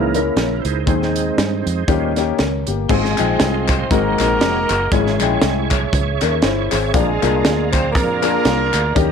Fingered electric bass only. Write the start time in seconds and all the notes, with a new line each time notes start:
Already playing: C#2
0.36 A#1
0.65 C#2
0.87 D#2
1.38 G2
1.66 F2
1.88 D#2
2.40 C#2
2.68 G1
2.90 G#1
3.19 A#1
3.41 C2
3.91 G#1
4.20 A#1
4.42 F1
4.70 F#1
4.92 G#1
5.20 A#1
5.42 C2
5.93 C#2
6.22 D#2
6.44 G1
6.72 G#1
6.94 A#1
7.23 C2
7.45 D2
7.95 F2
8.46 C2
8.74 D2
8.96 D#2